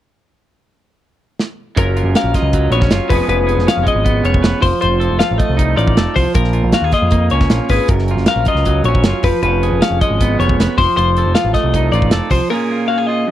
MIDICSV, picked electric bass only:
0, 0, Header, 1, 2, 480
1, 0, Start_track
1, 0, Key_signature, 6, "major"
1, 0, Tempo, 382897
1, 310, Time_signature, 4, 2, 24, 8
1, 16685, End_track
2, 0, Start_track
2, 0, Title_t, "Picked electric bass"
2, 0, Program_c, 0, 34
2, 2217, Note_on_c, 0, 30, 80
2, 2544, Note_off_c, 0, 30, 0
2, 2555, Note_on_c, 0, 30, 81
2, 2674, Note_off_c, 0, 30, 0
2, 2806, Note_on_c, 0, 34, 69
2, 2920, Note_off_c, 0, 34, 0
2, 3037, Note_on_c, 0, 37, 78
2, 3372, Note_off_c, 0, 37, 0
2, 3387, Note_on_c, 0, 34, 86
2, 3617, Note_off_c, 0, 34, 0
2, 3628, Note_on_c, 0, 30, 77
2, 3749, Note_off_c, 0, 30, 0
2, 3888, Note_on_c, 0, 29, 87
2, 4000, Note_off_c, 0, 29, 0
2, 4116, Note_on_c, 0, 29, 95
2, 4450, Note_off_c, 0, 29, 0
2, 4476, Note_on_c, 0, 29, 92
2, 4593, Note_off_c, 0, 29, 0
2, 4730, Note_on_c, 0, 29, 78
2, 4841, Note_off_c, 0, 29, 0
2, 4948, Note_on_c, 0, 32, 67
2, 5285, Note_off_c, 0, 32, 0
2, 5309, Note_on_c, 0, 29, 84
2, 5537, Note_off_c, 0, 29, 0
2, 5568, Note_on_c, 0, 29, 76
2, 5679, Note_off_c, 0, 29, 0
2, 5796, Note_on_c, 0, 29, 95
2, 5912, Note_off_c, 0, 29, 0
2, 6060, Note_on_c, 0, 29, 89
2, 6382, Note_off_c, 0, 29, 0
2, 6409, Note_on_c, 0, 29, 79
2, 6519, Note_off_c, 0, 29, 0
2, 6658, Note_on_c, 0, 33, 68
2, 6764, Note_off_c, 0, 33, 0
2, 6887, Note_on_c, 0, 36, 74
2, 7215, Note_off_c, 0, 36, 0
2, 7242, Note_on_c, 0, 33, 84
2, 7464, Note_off_c, 0, 33, 0
2, 7491, Note_on_c, 0, 29, 83
2, 7601, Note_off_c, 0, 29, 0
2, 7723, Note_on_c, 0, 36, 83
2, 7837, Note_off_c, 0, 36, 0
2, 7955, Note_on_c, 0, 34, 83
2, 8289, Note_off_c, 0, 34, 0
2, 8319, Note_on_c, 0, 34, 84
2, 8435, Note_off_c, 0, 34, 0
2, 8544, Note_on_c, 0, 39, 76
2, 8667, Note_off_c, 0, 39, 0
2, 8802, Note_on_c, 0, 41, 80
2, 9134, Note_off_c, 0, 41, 0
2, 9170, Note_on_c, 0, 37, 77
2, 9390, Note_off_c, 0, 37, 0
2, 9399, Note_on_c, 0, 34, 77
2, 9516, Note_off_c, 0, 34, 0
2, 9649, Note_on_c, 0, 32, 82
2, 9762, Note_off_c, 0, 32, 0
2, 9882, Note_on_c, 0, 30, 85
2, 10215, Note_off_c, 0, 30, 0
2, 10241, Note_on_c, 0, 30, 86
2, 10357, Note_off_c, 0, 30, 0
2, 10480, Note_on_c, 0, 34, 69
2, 10597, Note_off_c, 0, 34, 0
2, 10713, Note_on_c, 0, 37, 70
2, 11051, Note_off_c, 0, 37, 0
2, 11083, Note_on_c, 0, 34, 84
2, 11308, Note_off_c, 0, 34, 0
2, 11319, Note_on_c, 0, 30, 83
2, 11438, Note_off_c, 0, 30, 0
2, 11573, Note_on_c, 0, 29, 85
2, 11686, Note_off_c, 0, 29, 0
2, 11816, Note_on_c, 0, 29, 99
2, 12145, Note_off_c, 0, 29, 0
2, 12181, Note_on_c, 0, 29, 89
2, 12290, Note_off_c, 0, 29, 0
2, 12418, Note_on_c, 0, 29, 70
2, 12529, Note_off_c, 0, 29, 0
2, 12661, Note_on_c, 0, 32, 67
2, 12989, Note_off_c, 0, 32, 0
2, 13029, Note_on_c, 0, 29, 85
2, 13244, Note_off_c, 0, 29, 0
2, 13265, Note_on_c, 0, 29, 75
2, 13374, Note_off_c, 0, 29, 0
2, 13508, Note_on_c, 0, 29, 91
2, 13615, Note_off_c, 0, 29, 0
2, 13755, Note_on_c, 0, 29, 83
2, 14077, Note_off_c, 0, 29, 0
2, 14110, Note_on_c, 0, 29, 89
2, 14217, Note_off_c, 0, 29, 0
2, 14348, Note_on_c, 0, 33, 68
2, 14457, Note_off_c, 0, 33, 0
2, 14585, Note_on_c, 0, 36, 72
2, 14912, Note_off_c, 0, 36, 0
2, 14949, Note_on_c, 0, 33, 86
2, 15166, Note_off_c, 0, 33, 0
2, 15178, Note_on_c, 0, 29, 76
2, 15291, Note_off_c, 0, 29, 0
2, 15427, Note_on_c, 0, 36, 92
2, 15537, Note_off_c, 0, 36, 0
2, 16685, End_track
0, 0, End_of_file